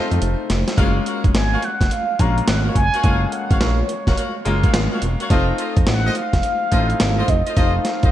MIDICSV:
0, 0, Header, 1, 6, 480
1, 0, Start_track
1, 0, Tempo, 566038
1, 659, Time_signature, 4, 2, 24, 8
1, 6882, End_track
2, 0, Start_track
2, 0, Title_t, "Soft synth lead"
2, 0, Program_c, 0, 80
2, 1151, Note_on_c, 0, 80, 109
2, 1391, Note_on_c, 0, 78, 94
2, 1404, Note_off_c, 0, 80, 0
2, 1623, Note_on_c, 0, 77, 110
2, 1635, Note_off_c, 0, 78, 0
2, 1861, Note_on_c, 0, 82, 110
2, 1874, Note_off_c, 0, 77, 0
2, 2094, Note_off_c, 0, 82, 0
2, 2099, Note_on_c, 0, 78, 101
2, 2207, Note_off_c, 0, 78, 0
2, 2342, Note_on_c, 0, 80, 108
2, 2787, Note_off_c, 0, 80, 0
2, 2817, Note_on_c, 0, 78, 89
2, 3059, Note_on_c, 0, 73, 89
2, 3072, Note_off_c, 0, 78, 0
2, 3779, Note_off_c, 0, 73, 0
2, 4993, Note_on_c, 0, 78, 120
2, 5209, Note_off_c, 0, 78, 0
2, 5229, Note_on_c, 0, 77, 118
2, 6179, Note_on_c, 0, 75, 94
2, 6192, Note_off_c, 0, 77, 0
2, 6416, Note_on_c, 0, 77, 116
2, 6429, Note_off_c, 0, 75, 0
2, 6882, Note_off_c, 0, 77, 0
2, 6882, End_track
3, 0, Start_track
3, 0, Title_t, "Horn section"
3, 0, Program_c, 1, 61
3, 0, Note_on_c, 1, 75, 82
3, 85, Note_off_c, 1, 75, 0
3, 655, Note_on_c, 1, 66, 91
3, 656, Note_on_c, 1, 70, 79
3, 659, Note_on_c, 1, 73, 92
3, 660, Note_on_c, 1, 77, 106
3, 802, Note_off_c, 1, 66, 0
3, 803, Note_off_c, 1, 70, 0
3, 804, Note_off_c, 1, 73, 0
3, 805, Note_off_c, 1, 77, 0
3, 898, Note_on_c, 1, 66, 72
3, 900, Note_on_c, 1, 70, 65
3, 903, Note_on_c, 1, 73, 68
3, 904, Note_on_c, 1, 77, 79
3, 1044, Note_off_c, 1, 66, 0
3, 1045, Note_off_c, 1, 70, 0
3, 1046, Note_off_c, 1, 73, 0
3, 1047, Note_off_c, 1, 77, 0
3, 1292, Note_on_c, 1, 66, 71
3, 1294, Note_on_c, 1, 70, 71
3, 1298, Note_on_c, 1, 73, 71
3, 1298, Note_on_c, 1, 77, 79
3, 1373, Note_off_c, 1, 66, 0
3, 1374, Note_off_c, 1, 70, 0
3, 1376, Note_off_c, 1, 73, 0
3, 1376, Note_off_c, 1, 77, 0
3, 1856, Note_on_c, 1, 66, 78
3, 1856, Note_on_c, 1, 70, 68
3, 1857, Note_on_c, 1, 73, 69
3, 1859, Note_on_c, 1, 77, 84
3, 2002, Note_off_c, 1, 66, 0
3, 2003, Note_off_c, 1, 70, 0
3, 2003, Note_off_c, 1, 73, 0
3, 2004, Note_off_c, 1, 77, 0
3, 2250, Note_on_c, 1, 66, 67
3, 2253, Note_on_c, 1, 70, 66
3, 2255, Note_on_c, 1, 73, 71
3, 2256, Note_on_c, 1, 77, 77
3, 2332, Note_off_c, 1, 66, 0
3, 2334, Note_off_c, 1, 70, 0
3, 2335, Note_off_c, 1, 73, 0
3, 2335, Note_off_c, 1, 77, 0
3, 2492, Note_on_c, 1, 66, 78
3, 2494, Note_on_c, 1, 70, 76
3, 2495, Note_on_c, 1, 73, 70
3, 2497, Note_on_c, 1, 77, 81
3, 2564, Note_off_c, 1, 66, 0
3, 2566, Note_off_c, 1, 70, 0
3, 2566, Note_off_c, 1, 73, 0
3, 2568, Note_off_c, 1, 77, 0
3, 2575, Note_on_c, 1, 66, 90
3, 2576, Note_on_c, 1, 70, 86
3, 2576, Note_on_c, 1, 73, 93
3, 2579, Note_on_c, 1, 77, 101
3, 2722, Note_off_c, 1, 66, 0
3, 2723, Note_off_c, 1, 70, 0
3, 2723, Note_off_c, 1, 73, 0
3, 2724, Note_off_c, 1, 77, 0
3, 2967, Note_on_c, 1, 66, 74
3, 2969, Note_on_c, 1, 70, 69
3, 2972, Note_on_c, 1, 73, 73
3, 2973, Note_on_c, 1, 77, 85
3, 3048, Note_off_c, 1, 70, 0
3, 3049, Note_off_c, 1, 66, 0
3, 3051, Note_off_c, 1, 73, 0
3, 3052, Note_off_c, 1, 77, 0
3, 3058, Note_on_c, 1, 70, 69
3, 3059, Note_on_c, 1, 66, 74
3, 3061, Note_on_c, 1, 73, 67
3, 3062, Note_on_c, 1, 77, 82
3, 3204, Note_off_c, 1, 66, 0
3, 3204, Note_off_c, 1, 70, 0
3, 3205, Note_off_c, 1, 73, 0
3, 3206, Note_off_c, 1, 77, 0
3, 3450, Note_on_c, 1, 66, 71
3, 3452, Note_on_c, 1, 70, 71
3, 3454, Note_on_c, 1, 73, 69
3, 3456, Note_on_c, 1, 77, 82
3, 3521, Note_off_c, 1, 66, 0
3, 3521, Note_off_c, 1, 70, 0
3, 3523, Note_off_c, 1, 73, 0
3, 3524, Note_off_c, 1, 77, 0
3, 3532, Note_on_c, 1, 66, 69
3, 3532, Note_on_c, 1, 70, 66
3, 3533, Note_on_c, 1, 73, 70
3, 3535, Note_on_c, 1, 77, 81
3, 3681, Note_off_c, 1, 66, 0
3, 3681, Note_off_c, 1, 70, 0
3, 3681, Note_off_c, 1, 73, 0
3, 3682, Note_off_c, 1, 77, 0
3, 3930, Note_on_c, 1, 66, 74
3, 3932, Note_on_c, 1, 70, 70
3, 3934, Note_on_c, 1, 73, 71
3, 3936, Note_on_c, 1, 77, 78
3, 4012, Note_off_c, 1, 66, 0
3, 4013, Note_off_c, 1, 70, 0
3, 4014, Note_off_c, 1, 73, 0
3, 4015, Note_off_c, 1, 77, 0
3, 4166, Note_on_c, 1, 66, 73
3, 4168, Note_on_c, 1, 70, 66
3, 4169, Note_on_c, 1, 73, 71
3, 4173, Note_on_c, 1, 77, 80
3, 4250, Note_off_c, 1, 66, 0
3, 4251, Note_off_c, 1, 70, 0
3, 4252, Note_off_c, 1, 73, 0
3, 4253, Note_off_c, 1, 77, 0
3, 4409, Note_on_c, 1, 66, 76
3, 4412, Note_on_c, 1, 70, 69
3, 4413, Note_on_c, 1, 73, 74
3, 4415, Note_on_c, 1, 77, 83
3, 4492, Note_off_c, 1, 66, 0
3, 4493, Note_off_c, 1, 70, 0
3, 4494, Note_off_c, 1, 73, 0
3, 4494, Note_off_c, 1, 77, 0
3, 4497, Note_on_c, 1, 65, 95
3, 4498, Note_on_c, 1, 69, 89
3, 4501, Note_on_c, 1, 72, 91
3, 4501, Note_on_c, 1, 75, 98
3, 4643, Note_off_c, 1, 65, 0
3, 4644, Note_off_c, 1, 69, 0
3, 4645, Note_off_c, 1, 72, 0
3, 4645, Note_off_c, 1, 75, 0
3, 4736, Note_on_c, 1, 65, 78
3, 4740, Note_on_c, 1, 69, 67
3, 4740, Note_on_c, 1, 72, 66
3, 4743, Note_on_c, 1, 75, 84
3, 4883, Note_off_c, 1, 65, 0
3, 4885, Note_off_c, 1, 69, 0
3, 4885, Note_off_c, 1, 72, 0
3, 4886, Note_off_c, 1, 75, 0
3, 5129, Note_on_c, 1, 65, 77
3, 5130, Note_on_c, 1, 69, 67
3, 5132, Note_on_c, 1, 72, 70
3, 5134, Note_on_c, 1, 75, 88
3, 5212, Note_off_c, 1, 65, 0
3, 5212, Note_off_c, 1, 69, 0
3, 5213, Note_off_c, 1, 72, 0
3, 5214, Note_off_c, 1, 75, 0
3, 5693, Note_on_c, 1, 65, 84
3, 5694, Note_on_c, 1, 69, 71
3, 5696, Note_on_c, 1, 72, 72
3, 5698, Note_on_c, 1, 75, 80
3, 5841, Note_off_c, 1, 65, 0
3, 5842, Note_off_c, 1, 69, 0
3, 5843, Note_off_c, 1, 72, 0
3, 5844, Note_off_c, 1, 75, 0
3, 6087, Note_on_c, 1, 65, 76
3, 6090, Note_on_c, 1, 69, 69
3, 6091, Note_on_c, 1, 72, 67
3, 6092, Note_on_c, 1, 75, 79
3, 6170, Note_off_c, 1, 65, 0
3, 6172, Note_off_c, 1, 69, 0
3, 6173, Note_off_c, 1, 72, 0
3, 6173, Note_off_c, 1, 75, 0
3, 6328, Note_on_c, 1, 65, 78
3, 6331, Note_on_c, 1, 69, 77
3, 6333, Note_on_c, 1, 72, 70
3, 6333, Note_on_c, 1, 75, 89
3, 6404, Note_off_c, 1, 65, 0
3, 6405, Note_off_c, 1, 69, 0
3, 6408, Note_off_c, 1, 72, 0
3, 6409, Note_off_c, 1, 75, 0
3, 6415, Note_on_c, 1, 65, 92
3, 6415, Note_on_c, 1, 69, 88
3, 6418, Note_on_c, 1, 72, 90
3, 6420, Note_on_c, 1, 75, 113
3, 6562, Note_off_c, 1, 65, 0
3, 6562, Note_off_c, 1, 69, 0
3, 6564, Note_off_c, 1, 72, 0
3, 6565, Note_off_c, 1, 75, 0
3, 6806, Note_on_c, 1, 65, 78
3, 6807, Note_on_c, 1, 69, 74
3, 6810, Note_on_c, 1, 72, 73
3, 6810, Note_on_c, 1, 75, 85
3, 6882, Note_off_c, 1, 65, 0
3, 6882, Note_off_c, 1, 69, 0
3, 6882, Note_off_c, 1, 72, 0
3, 6882, Note_off_c, 1, 75, 0
3, 6882, End_track
4, 0, Start_track
4, 0, Title_t, "Grand piano"
4, 0, Program_c, 2, 0
4, 0, Control_c, 2, 64, 127
4, 0, Note_on_c, 2, 57, 86
4, 0, Note_on_c, 2, 60, 77
4, 0, Note_on_c, 2, 63, 74
4, 0, Note_on_c, 2, 64, 69
4, 0, Note_on_c, 2, 65, 93
4, 535, Note_off_c, 2, 57, 0
4, 537, Note_off_c, 2, 60, 0
4, 538, Note_off_c, 2, 63, 0
4, 540, Note_off_c, 2, 65, 0
4, 659, Note_on_c, 2, 56, 91
4, 663, Note_on_c, 2, 58, 81
4, 665, Note_on_c, 2, 61, 80
4, 669, Note_on_c, 2, 65, 100
4, 671, Control_c, 2, 64, 0
4, 679, Note_off_c, 2, 64, 0
4, 823, Control_c, 2, 64, 127
4, 1430, Note_off_c, 2, 56, 0
4, 1432, Note_off_c, 2, 58, 0
4, 1433, Note_off_c, 2, 61, 0
4, 1435, Note_off_c, 2, 65, 0
4, 1857, Note_on_c, 2, 56, 74
4, 1860, Note_on_c, 2, 58, 67
4, 1865, Note_on_c, 2, 61, 73
4, 1866, Note_on_c, 2, 65, 84
4, 2453, Note_off_c, 2, 56, 0
4, 2455, Note_off_c, 2, 58, 0
4, 2457, Note_off_c, 2, 61, 0
4, 2458, Note_off_c, 2, 65, 0
4, 2575, Note_on_c, 2, 56, 76
4, 2577, Note_on_c, 2, 57, 52
4, 2580, Note_on_c, 2, 61, 67
4, 2584, Note_on_c, 2, 65, 83
4, 2632, Note_on_c, 2, 58, 67
4, 2649, Note_off_c, 2, 57, 0
4, 3348, Note_off_c, 2, 56, 0
4, 3350, Note_off_c, 2, 61, 0
4, 3352, Note_off_c, 2, 65, 0
4, 3376, Note_off_c, 2, 58, 0
4, 3773, Note_on_c, 2, 56, 95
4, 3775, Note_on_c, 2, 58, 85
4, 3778, Note_on_c, 2, 82, 73
4, 3779, Note_on_c, 2, 61, 83
4, 3784, Note_on_c, 2, 65, 103
4, 4001, Note_off_c, 2, 82, 0
4, 4021, Note_on_c, 2, 77, 78
4, 4371, Note_off_c, 2, 56, 0
4, 4372, Note_off_c, 2, 58, 0
4, 4374, Note_off_c, 2, 61, 0
4, 4377, Note_off_c, 2, 65, 0
4, 4466, Note_off_c, 2, 77, 0
4, 4492, Note_on_c, 2, 57, 86
4, 4497, Note_on_c, 2, 60, 89
4, 4499, Note_on_c, 2, 63, 83
4, 4504, Note_on_c, 2, 65, 102
4, 4509, Control_c, 2, 64, 0
4, 4677, Control_c, 2, 64, 127
4, 5266, Note_off_c, 2, 57, 0
4, 5269, Note_off_c, 2, 60, 0
4, 5270, Note_off_c, 2, 63, 0
4, 5272, Note_off_c, 2, 65, 0
4, 5693, Note_on_c, 2, 57, 81
4, 5698, Note_on_c, 2, 60, 71
4, 5699, Note_on_c, 2, 63, 71
4, 5704, Note_on_c, 2, 64, 65
4, 5758, Note_on_c, 2, 65, 84
4, 5773, Note_off_c, 2, 64, 0
4, 6291, Note_off_c, 2, 57, 0
4, 6294, Note_off_c, 2, 60, 0
4, 6294, Note_off_c, 2, 63, 0
4, 6324, Note_off_c, 2, 65, 0
4, 6418, Note_on_c, 2, 57, 75
4, 6424, Note_on_c, 2, 60, 67
4, 6427, Note_on_c, 2, 63, 73
4, 6431, Note_on_c, 2, 65, 80
4, 6882, Note_off_c, 2, 57, 0
4, 6882, Note_off_c, 2, 60, 0
4, 6882, Note_off_c, 2, 63, 0
4, 6882, Note_off_c, 2, 65, 0
4, 6882, End_track
5, 0, Start_track
5, 0, Title_t, "Analog synth bass"
5, 0, Program_c, 3, 38
5, 95, Note_on_c, 3, 41, 92
5, 162, Note_off_c, 3, 41, 0
5, 181, Note_on_c, 3, 29, 90
5, 302, Note_off_c, 3, 29, 0
5, 425, Note_on_c, 3, 29, 89
5, 544, Note_off_c, 3, 29, 0
5, 660, Note_on_c, 3, 30, 110
5, 848, Note_off_c, 3, 30, 0
5, 1055, Note_on_c, 3, 29, 83
5, 1121, Note_off_c, 3, 29, 0
5, 1140, Note_on_c, 3, 32, 91
5, 1328, Note_off_c, 3, 32, 0
5, 1533, Note_on_c, 3, 30, 92
5, 1600, Note_off_c, 3, 30, 0
5, 1862, Note_on_c, 3, 34, 97
5, 2049, Note_off_c, 3, 34, 0
5, 2102, Note_on_c, 3, 32, 86
5, 2289, Note_off_c, 3, 32, 0
5, 2336, Note_on_c, 3, 30, 89
5, 2458, Note_off_c, 3, 30, 0
5, 2578, Note_on_c, 3, 30, 106
5, 2767, Note_off_c, 3, 30, 0
5, 2974, Note_on_c, 3, 32, 98
5, 3041, Note_off_c, 3, 32, 0
5, 3059, Note_on_c, 3, 34, 102
5, 3247, Note_off_c, 3, 34, 0
5, 3452, Note_on_c, 3, 29, 97
5, 3520, Note_off_c, 3, 29, 0
5, 3779, Note_on_c, 3, 30, 95
5, 3968, Note_off_c, 3, 30, 0
5, 4021, Note_on_c, 3, 32, 97
5, 4141, Note_off_c, 3, 32, 0
5, 4260, Note_on_c, 3, 28, 72
5, 4381, Note_off_c, 3, 28, 0
5, 4497, Note_on_c, 3, 29, 113
5, 4686, Note_off_c, 3, 29, 0
5, 4892, Note_on_c, 3, 29, 84
5, 4960, Note_off_c, 3, 29, 0
5, 4981, Note_on_c, 3, 33, 107
5, 5169, Note_off_c, 3, 33, 0
5, 5371, Note_on_c, 3, 29, 90
5, 5439, Note_off_c, 3, 29, 0
5, 5699, Note_on_c, 3, 33, 78
5, 5887, Note_off_c, 3, 33, 0
5, 5941, Note_on_c, 3, 32, 93
5, 6129, Note_off_c, 3, 32, 0
5, 6175, Note_on_c, 3, 29, 89
5, 6298, Note_off_c, 3, 29, 0
5, 6419, Note_on_c, 3, 29, 110
5, 6608, Note_off_c, 3, 29, 0
5, 6814, Note_on_c, 3, 32, 93
5, 6881, Note_off_c, 3, 32, 0
5, 6882, End_track
6, 0, Start_track
6, 0, Title_t, "Drums"
6, 97, Note_on_c, 9, 42, 49
6, 182, Note_off_c, 9, 42, 0
6, 184, Note_on_c, 9, 42, 87
6, 268, Note_off_c, 9, 42, 0
6, 422, Note_on_c, 9, 38, 87
6, 422, Note_on_c, 9, 42, 71
6, 507, Note_off_c, 9, 38, 0
6, 507, Note_off_c, 9, 42, 0
6, 573, Note_on_c, 9, 42, 59
6, 574, Note_on_c, 9, 38, 80
6, 658, Note_off_c, 9, 42, 0
6, 659, Note_off_c, 9, 38, 0
6, 659, Note_on_c, 9, 36, 109
6, 660, Note_on_c, 9, 42, 66
6, 743, Note_off_c, 9, 36, 0
6, 744, Note_off_c, 9, 42, 0
6, 901, Note_on_c, 9, 42, 69
6, 986, Note_off_c, 9, 42, 0
6, 1054, Note_on_c, 9, 36, 94
6, 1054, Note_on_c, 9, 42, 48
6, 1139, Note_off_c, 9, 36, 0
6, 1139, Note_off_c, 9, 42, 0
6, 1142, Note_on_c, 9, 38, 99
6, 1142, Note_on_c, 9, 42, 61
6, 1226, Note_off_c, 9, 38, 0
6, 1227, Note_off_c, 9, 42, 0
6, 1378, Note_on_c, 9, 42, 62
6, 1463, Note_off_c, 9, 42, 0
6, 1532, Note_on_c, 9, 36, 82
6, 1537, Note_on_c, 9, 38, 65
6, 1538, Note_on_c, 9, 42, 53
6, 1617, Note_off_c, 9, 36, 0
6, 1621, Note_off_c, 9, 42, 0
6, 1621, Note_on_c, 9, 42, 84
6, 1622, Note_off_c, 9, 38, 0
6, 1705, Note_off_c, 9, 42, 0
6, 1860, Note_on_c, 9, 42, 71
6, 1861, Note_on_c, 9, 36, 87
6, 1945, Note_off_c, 9, 42, 0
6, 1946, Note_off_c, 9, 36, 0
6, 2016, Note_on_c, 9, 42, 50
6, 2099, Note_on_c, 9, 38, 126
6, 2100, Note_off_c, 9, 42, 0
6, 2101, Note_on_c, 9, 42, 91
6, 2184, Note_off_c, 9, 38, 0
6, 2186, Note_off_c, 9, 42, 0
6, 2335, Note_on_c, 9, 36, 87
6, 2338, Note_on_c, 9, 42, 73
6, 2420, Note_off_c, 9, 36, 0
6, 2422, Note_off_c, 9, 42, 0
6, 2491, Note_on_c, 9, 42, 55
6, 2574, Note_off_c, 9, 42, 0
6, 2574, Note_on_c, 9, 42, 71
6, 2577, Note_on_c, 9, 36, 106
6, 2659, Note_off_c, 9, 42, 0
6, 2662, Note_off_c, 9, 36, 0
6, 2817, Note_on_c, 9, 42, 67
6, 2901, Note_off_c, 9, 42, 0
6, 2973, Note_on_c, 9, 42, 49
6, 2974, Note_on_c, 9, 36, 100
6, 3058, Note_off_c, 9, 36, 0
6, 3058, Note_off_c, 9, 42, 0
6, 3058, Note_on_c, 9, 38, 97
6, 3059, Note_on_c, 9, 42, 66
6, 3143, Note_off_c, 9, 38, 0
6, 3143, Note_off_c, 9, 42, 0
6, 3298, Note_on_c, 9, 42, 66
6, 3383, Note_off_c, 9, 42, 0
6, 3452, Note_on_c, 9, 36, 76
6, 3456, Note_on_c, 9, 38, 63
6, 3457, Note_on_c, 9, 42, 47
6, 3537, Note_off_c, 9, 36, 0
6, 3540, Note_off_c, 9, 42, 0
6, 3540, Note_on_c, 9, 42, 81
6, 3541, Note_off_c, 9, 38, 0
6, 3625, Note_off_c, 9, 42, 0
6, 3778, Note_on_c, 9, 42, 72
6, 3863, Note_off_c, 9, 42, 0
6, 3930, Note_on_c, 9, 42, 51
6, 3932, Note_on_c, 9, 36, 93
6, 4015, Note_off_c, 9, 42, 0
6, 4016, Note_on_c, 9, 38, 119
6, 4017, Note_off_c, 9, 36, 0
6, 4019, Note_on_c, 9, 42, 95
6, 4101, Note_off_c, 9, 38, 0
6, 4103, Note_off_c, 9, 42, 0
6, 4255, Note_on_c, 9, 42, 77
6, 4340, Note_off_c, 9, 42, 0
6, 4411, Note_on_c, 9, 42, 57
6, 4495, Note_off_c, 9, 42, 0
6, 4496, Note_on_c, 9, 36, 102
6, 4496, Note_on_c, 9, 42, 67
6, 4581, Note_off_c, 9, 36, 0
6, 4581, Note_off_c, 9, 42, 0
6, 4735, Note_on_c, 9, 42, 79
6, 4820, Note_off_c, 9, 42, 0
6, 4889, Note_on_c, 9, 42, 52
6, 4891, Note_on_c, 9, 36, 98
6, 4974, Note_off_c, 9, 42, 0
6, 4975, Note_on_c, 9, 38, 101
6, 4975, Note_on_c, 9, 42, 63
6, 4976, Note_off_c, 9, 36, 0
6, 5059, Note_off_c, 9, 38, 0
6, 5060, Note_off_c, 9, 42, 0
6, 5214, Note_on_c, 9, 42, 61
6, 5299, Note_off_c, 9, 42, 0
6, 5370, Note_on_c, 9, 36, 84
6, 5372, Note_on_c, 9, 38, 65
6, 5373, Note_on_c, 9, 42, 50
6, 5454, Note_off_c, 9, 42, 0
6, 5454, Note_on_c, 9, 42, 81
6, 5455, Note_off_c, 9, 36, 0
6, 5457, Note_off_c, 9, 38, 0
6, 5539, Note_off_c, 9, 42, 0
6, 5695, Note_on_c, 9, 42, 71
6, 5698, Note_on_c, 9, 36, 87
6, 5780, Note_off_c, 9, 42, 0
6, 5783, Note_off_c, 9, 36, 0
6, 5849, Note_on_c, 9, 42, 49
6, 5934, Note_off_c, 9, 42, 0
6, 5935, Note_on_c, 9, 38, 127
6, 5937, Note_on_c, 9, 42, 95
6, 6020, Note_off_c, 9, 38, 0
6, 6022, Note_off_c, 9, 42, 0
6, 6175, Note_on_c, 9, 36, 86
6, 6175, Note_on_c, 9, 42, 75
6, 6259, Note_off_c, 9, 36, 0
6, 6260, Note_off_c, 9, 42, 0
6, 6331, Note_on_c, 9, 42, 57
6, 6415, Note_off_c, 9, 42, 0
6, 6416, Note_on_c, 9, 42, 69
6, 6417, Note_on_c, 9, 36, 107
6, 6501, Note_off_c, 9, 42, 0
6, 6502, Note_off_c, 9, 36, 0
6, 6655, Note_on_c, 9, 38, 63
6, 6655, Note_on_c, 9, 42, 75
6, 6739, Note_off_c, 9, 42, 0
6, 6740, Note_off_c, 9, 38, 0
6, 6808, Note_on_c, 9, 42, 47
6, 6812, Note_on_c, 9, 36, 99
6, 6882, Note_off_c, 9, 36, 0
6, 6882, Note_off_c, 9, 42, 0
6, 6882, End_track
0, 0, End_of_file